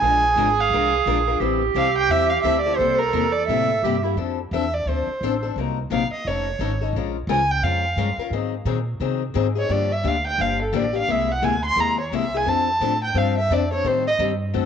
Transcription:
Already playing: violin G#5
0.01 upright bass A#1, steel-string acoustic guitar F3 G#3 D4 F4 A#4, clarinet G#4
0.36 upright bass G#1, steel-string acoustic guitar F3 G#3 D4 F4 A#4
0.60 violin F5
0.70 upright bass C2, steel-string acoustic guitar F3 G#3 D4 F4 A#4
1.06 upright bass A#1, steel-string acoustic guitar F3 G#3 D4 F4 A#4
1.28 steel-string acoustic guitar D4 F4 A#4
1.40 upright bass A1, steel-string acoustic guitar E3 G3 C4 E4 A4, clarinet G4
1.74 upright bass C2, steel-string acoustic guitar E3 G3 C4 E4 A4, violin F5
1.98 violin G5
2.09 upright bass E2, steel-string acoustic guitar E3 G3 C4 E4 A4, violin E5
2.30 violin F5
2.43 upright bass D2, steel-string acoustic guitar E3 G3 C4 E4 A4, violin E5
2.62 violin D5
2.66 steel-string acoustic guitar C4 E4 A4
2.76 upright bass C2, steel-string acoustic guitar C3 G3 A#3, clarinet A4, violin C5
2.81 steel-string acoustic guitar E4 G4
2.99 violin A#4
3.13 upright bass E2, steel-string acoustic guitar C3 G3 A#3 E4 G4
3.32 violin D5
3.48 upright bass A2, steel-string acoustic guitar C3 G3 A#3 E4 G4, violin E5
3.83 upright bass G2, steel-string acoustic guitar C3 G3 A#3 E4 G4, clarinet G4
4.03 steel-string acoustic guitar A#3 E4 G4, clarinet E4
4.16 upright bass F2, steel-string acoustic guitar F3 C4 D4 A4
4.51 upright bass E2, steel-string acoustic guitar F3 C4 D4 A4, violin E5
4.74 violin D5
4.86 upright bass D2, steel-string acoustic guitar F3 C4 D4 A4, violin C5
5.07 muted upright bass stroke
5.21 upright bass A1, steel-string acoustic guitar F3 C4 D4 A4
5.43 steel-string acoustic guitar C4 D4 A4
5.56 upright bass C2, steel-string acoustic guitar C3 F#3 A#3 D#4 A#4
5.90 upright bass A#1, steel-string acoustic guitar C3 F#3 A#3 D#4 A#4, violin F5
6.11 violin D#5, muted upright bass stroke
6.25 upright bass F1, steel-string acoustic guitar F3 C#4 D#4 A4, violin C#5
6.59 upright bass G#1, steel-string acoustic guitar F3 C#4 D#4 A4
6.81 steel-string acoustic guitar C#4 D#4 A4
6.93 upright bass A#1, steel-string acoustic guitar F3 G#3 C#4
6.97 steel-string acoustic guitar F4 A#4
7.27 upright bass C#2, steel-string acoustic guitar F3 G#3 C#4 F4 A#4, violin G#5
7.51 violin G5
7.62 upright bass F2, steel-string acoustic guitar F3 G#3 C#4 F4 A#4, violin F5
7.96 upright bass G2, steel-string acoustic guitar F3 G#3 C#4 F4 A#4
8.18 steel-string acoustic guitar C#4 F4 A#4, muted upright bass stroke
8.30 upright bass G#2, steel-string acoustic guitar D#3 F#3 C4 D#4 G#4
8.65 upright bass A#2, steel-string acoustic guitar D#3 F#3 C4 D#4 G#4
9.00 upright bass C3, steel-string acoustic guitar D#3 F#3 C4 D#4 G#4
9.34 upright bass G#2, steel-string acoustic guitar D#3 F#3 C4 D#4 G#4
9.55 steel-string acoustic guitar C4 D#4 G#4, violin C#5
9.69 upright bass G2, steel-string acoustic guitar D3 F3 A#3 D4 G4, violin D5
9.92 violin E5
10.04 upright bass D2, steel-string acoustic guitar D3 F3 A#3 D4 G4, violin F5
10.27 violin G5
10.38 upright bass G1, steel-string acoustic guitar D3 F3 A#3 D4 G4, violin F5
10.63 violin A4
10.72 upright bass A1, steel-string acoustic guitar D3 F3 A#3 D4 G4
10.76 violin D5
10.93 steel-string acoustic guitar A#3 D4 G4
10.98 violin F5
11.08 upright bass C2, steel-string acoustic guitar C3 G#3 A#3 E4 G#4, violin E5
11.32 violin F#5
11.42 upright bass D2, steel-string acoustic guitar C3 G#3 A#3 E4 G#4, violin G#5
11.65 violin C6
11.76 upright bass D#2, steel-string acoustic guitar C3 G#3 A#3 E4 G#4
11.81 violin A#5
12.01 violin C#5
12.12 upright bass C2, steel-string acoustic guitar C3 G#3 A#3 E4 G#4, violin E5
12.34 steel-string acoustic guitar A#3 E4 G#4, violin G#5
12.46 upright bass F2, steel-string acoustic guitar F3 C4 D4 A4, violin A5
12.80 upright bass A2, steel-string acoustic guitar F3 C4 D4 A4
13.04 violin G5
13.14 upright bass G2, steel-string acoustic guitar F3 C4 D4 A4, violin F5
13.38 violin E5
13.50 upright bass F2, steel-string acoustic guitar F3 C4 D4 A4, violin D5
13.72 steel-string acoustic guitar C4 D4 A4, violin C#5
13.84 upright bass A2, steel-string acoustic guitar D#3 G3 C4 G4 A4, violin C5
14.07 violin D#5
14.19 upright bass G2, steel-string acoustic guitar D#3 G3 C4 G4 A4
14.54 upright bass F#2, steel-string acoustic guitar D3 A3 C4 F#4 A4

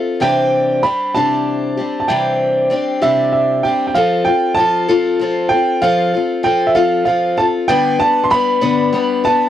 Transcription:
Already playing: steel-string acoustic guitar C4 F4 A4
0.20 steel-string acoustic guitar C3 E3 G3 C4 D4 G4, grand piano G5
0.83 steel-string acoustic guitar G3 C4 D4 G4, grand piano B5
1.15 steel-string acoustic guitar C3 E3 G3 C4 D4 G4, grand piano A5
1.77 steel-string acoustic guitar G3 C4 D4 G4
2.00 grand piano A5
2.08 steel-string acoustic guitar C3 E3 G3 C4 D4 G4, grand piano G5
2.70 steel-string acoustic guitar G3 C4 D4 G4
3.02 steel-string acoustic guitar C3 E3 G3 C4 D4 G4, grand piano E5
3.32 grand piano E5
3.63 steel-string acoustic guitar D4 G4, grand piano G5
3.68 steel-string acoustic guitar G3 C4
3.87 grand piano G5
3.94 steel-string acoustic guitar F3 C4 F4 A4, grand piano F5
4.25 steel-string acoustic guitar F4 A4, grand piano G5
4.29 steel-string acoustic guitar C4
4.55 steel-string acoustic guitar F3 C4, grand piano A5
4.59 steel-string acoustic guitar F4 A4
4.88 steel-string acoustic guitar F3 C4 F4 A4
5.20 steel-string acoustic guitar F3 C4 F4 A4
5.49 steel-string acoustic guitar F4 A4, grand piano G5
5.53 steel-string acoustic guitar C4
5.82 steel-string acoustic guitar F3 C4 F4 A4, grand piano F5
6.13 steel-string acoustic guitar C4 F4 A4
6.43 steel-string acoustic guitar F3 C4 F4 A4, grand piano G5
6.67 grand piano E5
6.75 steel-string acoustic guitar F3 C4 F4 A4, grand piano F5
7.05 steel-string acoustic guitar F3 C4 F4 A4, grand piano F5
7.37 steel-string acoustic guitar C4 F4 A4, grand piano A5
7.68 steel-string acoustic guitar G2 D3 G3 B3 D4 B4, grand piano G5
7.99 steel-string acoustic guitar G3 B3 D4 B4, grand piano A5
8.24 grand piano C6
8.30 steel-string acoustic guitar G3 B3 D4 B4, grand piano B5
8.61 steel-string acoustic guitar G2 D3 G3 B3 D4 B4
8.93 steel-string acoustic guitar G3 B3 D4 B4
9.24 steel-string acoustic guitar G3 B3 D4 B4, grand piano A5

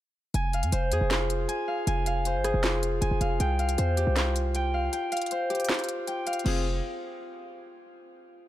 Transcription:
0.34 808-style bass F1, harp G#5, closed hi-hat
0.53 harp F5, closed hi-hat
0.63 808-style bass F2, closed hi-hat
0.72 808-style bass F1, harp C5, closed hi-hat
0.92 808-style bass F2, harp G#4, closed hi-hat
1.01 808-style bass F1
1.10 harp F4, snare, clap, closed hi-hat
1.30 closed hi-hat
1.48 harp G#5, closed hi-hat
1.68 harp F5
1.87 808-style bass F1, harp G#5, closed hi-hat
2.06 harp F5, closed hi-hat
2.25 harp C5, closed hi-hat
2.35 808-style bass G1
2.44 harp G#4, cross-stick, closed hi-hat
2.54 808-style bass F1
2.63 harp F4, snare, clap, closed hi-hat
2.83 closed hi-hat
3.01 808-style bass F1, harp G#5, closed hi-hat
3.11 808-style bass F1
3.21 808-style bass F1, harp F5, closed hi-hat
3.40 808-style bass C2, harp G5, closed hi-hat
3.59 harp F5, closed hi-hat
3.69 closed hi-hat
3.78 808-style bass E2, harp C5, closed hi-hat
3.97 harp G4, closed hi-hat
4.07 808-style bass C2
4.16 harp F4, snare, clap, closed hi-hat
4.36 closed hi-hat
4.55 harp G5, closed hi-hat
4.74 harp F5
4.93 harp G5, closed hi-hat
5.12 harp F5, closed hi-hat
5.17 closed hi-hat
5.22 closed hi-hat
5.26 closed hi-hat
5.31 harp C5, closed hi-hat
5.50 harp G4, closed hi-hat
5.55 closed hi-hat
5.60 closed hi-hat
5.65 closed hi-hat
5.69 harp F4, snare, clap, closed hi-hat
5.74 closed hi-hat
5.79 closed hi-hat
5.84 closed hi-hat
5.89 closed hi-hat
6.08 harp G5, closed hi-hat
6.27 harp F5, closed hi-hat, open hi-hat
6.33 closed hi-hat
6.39 closed hi-hat
6.44 808-style bass F1, harp C4 F4 G#4, crash

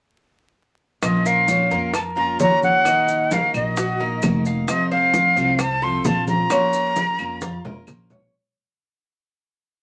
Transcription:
1.02 upright bass A#1, steel-string acoustic guitar F3 A#3 C#4 F4, flute D#5, high bongo, high conga, claves, maracas
1.25 cuban tres A#4, flute F5, high bongo, high conga, maracas
1.48 steel-string acoustic guitar F3 A#3 C#4 F4, cuban tres C#5, high bongo, high conga, maracas
1.71 upright bass F2, steel-string acoustic guitar A#3 C#4 F4, cuban tres A#4, high bongo, high conga, maracas
1.94 flute A5, muted steel-string acoustic guitar stroke, high bongo, high conga, claves, maracas
2.16 steel-string acoustic guitar A#3 C#4 F4, cuban tres F4, flute A#5, high bongo, high conga
2.39 upright bass D#2, steel-string acoustic guitar F3 A#3 C#4 F4, cuban tres C#4, flute A#5, high bongo, low bongo, high conga, maracas
2.63 flute F#5, high conga, maracas
2.84 steel-string acoustic guitar D#3 A#3 D#4 F#4, cuban tres D#4, high bongo, high conga, claves, maracas
3.08 high bongo, high conga, maracas
3.31 steel-string acoustic guitar D#3 A#3 D#4 F#4, cuban tres A#4, flute F5, high bongo, high conga, maracas
3.54 upright bass A#1, steel-string acoustic guitar A#3 D#4 F#4, flute D#5, high bongo, high conga, claves, maracas
3.76 cuban tres F#4, muted steel-string acoustic guitar stroke, high bongo, high conga, maracas
4.00 steel-string acoustic guitar A#3 D#4 F#4, cuban tres A#4, high bongo, high conga
4.22 upright bass F1, steel-string acoustic guitar D#3 A#3 D#4 F#4, high bongo, low bongo, high conga, claves, maracas
4.45 cuban tres F5, maracas
4.67 steel-string acoustic guitar C3 F3 A3 C4 F4, flute D#5, high bongo, high conga, claves, maracas
4.91 cuban tres C5, flute F5, high bongo, high conga
5.13 steel-string acoustic guitar F3 A3 C4 F4, cuban tres F5, high bongo, high conga, maracas
5.36 upright bass C2, steel-string acoustic guitar F3 A3 C4 F4, cuban tres C5, high bongo, high conga, maracas
5.59 flute A5, muted steel-string acoustic guitar stroke, high bongo, high conga, claves, maracas
5.82 steel-string acoustic guitar F3 A3 C4 F4, cuban tres A4, flute C6, high bongo, high conga
6.05 upright bass A#1, steel-string acoustic guitar F3 A3 C4 F4, cuban tres F4, flute A5, high bongo, low bongo, high conga, maracas
6.27 flute A#5, high conga, maracas
6.50 steel-string acoustic guitar F3 A#3 C#4 F4, cuban tres C#4, high bongo, high conga, claves, maracas
6.73 high bongo, high conga, maracas
6.96 steel-string acoustic guitar F3 A#3 C#4 F4, cuban tres A#4, high bongo, high conga, maracas
7.18 upright bass F2, steel-string acoustic guitar A#3 C#4 F4, high bongo, claves, maracas
7.41 cuban tres F4, muted steel-string acoustic guitar stroke, high bongo, high conga, maracas
7.65 steel-string acoustic guitar A#3 C#4 F4, cuban tres A#4, high bongo, low conga
7.87 upright bass A#1, steel-string acoustic guitar F3 A#3 C#4 F4, high bongo, low bongo, claves, maracas
8.10 cuban tres C#5, low conga, maracas

